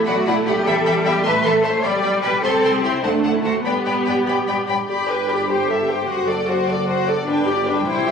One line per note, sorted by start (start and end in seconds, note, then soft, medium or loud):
0.00 0.64 A3 medium
0.05 0.16 B1 medium
0.05 0.27 F#4 loud
0.05 0.15 D5 medium
0.05 0.15 F#5 medium
0.05 0.13 B5 medium
0.26 0.35 B1 medium
0.26 0.47 E4 medium
0.26 0.35 D5 medium
0.26 0.35 F#5 medium
0.26 0.34 B5 medium
0.46 0.54 B1 medium
0.46 0.67 G4 medium
0.46 0.55 D5 medium
0.46 0.55 F#5 medium
0.46 0.54 B5 medium
0.66 0.74 E2 medium
0.66 1.25 G3 medium
0.66 1.06 A4 medium
0.66 0.75 E5 medium
0.66 0.75 G5 medium
0.66 0.74 B5 medium
0.85 0.94 E2 medium
0.85 0.94 E5 medium
0.85 0.94 G5 medium
0.85 0.93 B5 medium
1.04 1.14 E2 medium
1.04 1.25 G4 loud
1.04 1.13 E5 medium
1.04 1.14 G5 medium
1.04 1.12 B5 medium
1.24 1.34 A1 medium
1.24 1.83 A3 medium
1.24 1.45 B4 loud
1.24 1.34 E5 medium
1.24 1.34 A5 medium
1.24 1.32 C6 medium
1.43 1.53 A1 medium
1.43 1.65 A4 medium
1.43 1.53 E5 medium
1.43 1.53 A5 medium
1.43 1.51 C6 medium
1.63 1.72 A1 medium
1.63 1.84 C5 loud
1.63 1.72 E5 medium
1.63 1.72 A5 medium
1.63 1.71 C6 medium
1.83 1.92 B1 medium
1.83 2.44 G3 medium
1.83 2.23 D5 loud
1.83 1.92 D5 medium
1.83 1.91 G5 medium
1.83 1.91 B5 medium
2.02 2.11 B1 medium
2.02 2.11 D5 medium
2.02 2.10 G5 medium
2.02 2.11 B5 medium
2.22 2.31 B1 medium
2.22 2.42 B4 loud
2.22 2.31 D5 medium
2.22 2.31 G5 medium
2.22 2.31 B5 medium
2.43 2.51 C2 medium
2.43 3.03 C4 medium
2.43 2.73 A4 loud
2.43 2.51 C5 medium
2.43 2.52 G5 medium
2.43 2.52 C6 medium
2.62 2.71 C2 medium
2.62 2.70 C5 medium
2.62 2.71 G5 medium
2.62 2.73 C6 medium
2.74 2.84 G4 medium
2.83 2.91 C2 medium
2.83 3.04 E4 medium
2.83 2.92 C5 medium
2.83 2.92 G5 medium
2.83 2.93 C6 medium
3.03 3.11 D2 medium
3.03 3.66 A3 medium
3.03 3.34 D4 medium
3.03 3.12 C5 medium
3.03 3.12 F#5 medium
3.03 3.11 A5 medium
3.23 3.32 D2 medium
3.23 3.31 C5 medium
3.23 3.32 F#5 medium
3.23 3.32 A5 medium
3.35 3.45 E4 medium
3.44 3.52 D2 medium
3.44 3.52 F#4 medium
3.44 3.53 C5 medium
3.44 3.53 F#5 medium
3.44 3.52 A5 medium
3.64 3.73 G2 medium
3.64 4.56 B3 medium
3.64 4.66 G4 medium
3.64 3.74 D5 medium
3.64 3.74 G5 soft
3.64 3.73 B5 medium
3.85 3.93 G2 medium
3.85 3.94 D5 soft
3.85 3.94 G5 soft
3.85 3.93 B5 soft
4.05 4.14 G2 medium
4.05 4.15 D5 soft
4.05 4.15 G5 medium
4.05 4.13 B5 soft
4.25 4.34 G2 medium
4.25 4.37 D5 soft
4.25 4.37 G5 soft
4.25 4.33 B5 soft
4.46 4.55 G2 medium
4.46 4.56 D5 soft
4.46 4.56 G5 soft
4.46 4.54 B5 soft
4.67 4.75 G2 medium
4.67 4.77 D5 soft
4.67 4.77 G5 soft
4.67 4.75 B5 soft
4.88 6.04 G1 soft
4.88 6.04 G2 medium
4.88 5.07 G4 soft
4.88 5.07 D5 soft
4.88 5.08 B5 soft
5.08 5.29 B4 soft
5.08 5.29 G5 soft
5.28 5.48 G4 soft
5.28 5.48 D5 soft
5.28 5.50 B5 soft
5.47 5.67 G4 soft
5.47 5.66 C5 soft
5.51 5.68 G5 soft
5.68 5.88 G4 soft
5.68 5.89 A4 soft
5.68 5.89 E5 soft
5.89 6.09 G4 soft
5.89 6.07 C5 soft
5.89 6.08 G5 soft
6.08 7.24 F#1 medium
6.08 7.25 F#2 medium
6.08 6.27 F#4 soft
6.08 6.27 C5 soft
6.08 6.27 F#5 soft
6.27 6.48 A4 soft
6.27 6.48 D5 soft
6.48 6.68 F#4 soft
6.48 6.68 C5 soft
6.48 6.68 F#5 soft
6.67 6.88 A4 soft
6.67 6.87 D5 soft
6.67 6.88 D5 soft
6.87 7.06 F#4 soft
6.87 7.06 C5 soft
6.87 7.07 F#5 soft
7.07 7.27 A4 soft
7.07 7.27 D5 soft
7.07 7.28 D5 soft
7.27 7.86 G1 medium
7.27 7.86 G2 medium
7.27 7.45 D4 medium
7.27 7.46 B4 soft
7.27 7.46 G5 medium
7.47 7.66 G4 medium
7.47 7.67 D5 soft
7.47 7.68 D5 soft
7.66 7.86 D4 soft
7.66 7.86 B4 soft
7.66 7.87 G5 soft
7.85 8.11 C2 medium
7.85 8.11 C3 medium
7.85 8.05 E4 soft
7.85 8.04 C5 medium
7.85 8.06 G5 soft
8.06 8.11 G4 soft
8.06 8.11 E5 medium
8.06 8.11 E5 soft